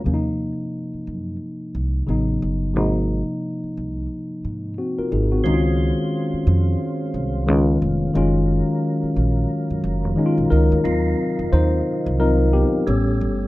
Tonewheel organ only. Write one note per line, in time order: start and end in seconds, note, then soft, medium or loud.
5.44 8.11 G#3 medium
5.44 8.11 C#4 medium
5.44 10.79 F4 medium
5.44 7.44 C5 medium
7.47 8.14 B3 medium
8.14 10.81 F#3 medium
8.14 10.81 C#4 medium
8.14 10.81 A#4 medium
10.84 12.84 C3 medium
10.84 12.84 D#3 medium
10.84 12.84 D#4 medium
10.84 12.84 F4 medium
12.87 13.47 G3 medium
12.87 13.47 A3 medium
12.87 13.47 C#4 medium